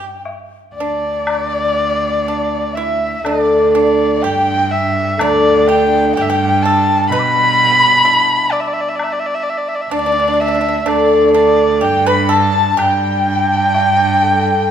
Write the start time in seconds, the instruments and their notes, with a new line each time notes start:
Already playing: cello G2, erhu G5, dizi G5
0.25 low woodblock
0.75 cello D2, erhu D5, dizi D5
0.80 pipa D4
1.27 high woodblock
2.28 pipa D4
2.73 pipa E4, dizi E5, erhu E5
3.23 cello D2, hammered dulcimer D3, pipa D4, dizi D5, erhu D5, high woodblock
3.73 pipa D4, dizi D5, erhu D5
4.22 cello G2, pipa G4, dizi G5, erhu G5
4.71 erhu E5
5.17 cello D2, hammered dulcimer D3, pipa D4, dizi D5, erhu D5, high woodblock
5.68 pipa G4, erhu G5
6.14 cello G2, pipa G4, dizi G5, erhu G5
6.21 erhu E5
6.29 pipa G4, dizi G5, erhu G5
6.62 pipa A4, erhu A5
7.09 cello B2, hammered dulcimer B2, pipa B4, erhu B5, dizi B5, high woodblock
7.19 dizi B5 D6
7.35 hammered dulcimer G3
7.59 hammered dulcimer B3
7.82 hammered dulcimer D4
8.04 pipa E4, hammered dulcimer G4
8.52 erhu D5
8.60 erhu E5
8.68 erhu D5
8.73 erhu E5
8.81 erhu D5
8.89 erhu E5
8.95 erhu D5
8.99 high woodblock
9.04 erhu E5
9.12 erhu D5
9.20 erhu E5
9.26 erhu D5
9.34 erhu E5
9.43 erhu D5
9.49 erhu E5
9.58 erhu D5
9.68 erhu E5
9.75 erhu D5
9.81 erhu E5
9.90 cello D2, pipa D4, erhu D5, dizi D5
9.99 pipa D4
10.06 pipa D4
10.12 pipa D4
10.19 pipa D4
10.28 pipa D4
10.34 pipa D4
10.41 pipa D4, erhu E5
10.48 pipa D4
10.55 pipa D4
10.61 pipa D4
10.69 pipa D4
10.86 cello D2, hammered dulcimer D3, pipa D4, dizi D5, erhu D5, high woodblock
11.34 pipa D4, dizi D5, erhu D5
11.81 cello G2, pipa G4, dizi G5, erhu G5
12.06 pipa B4, dizi B5, erhu B5
12.25 erhu B5
12.29 pipa A4, dizi A5, erhu A5
12.77 cello G2, hammered dulcimer G3, pipa G4, dizi G5, high woodblock
12.82 erhu G5
13.26 hammered dulcimer D4
13.74 hammered dulcimer G4, low woodblock
14.22 hammered dulcimer A4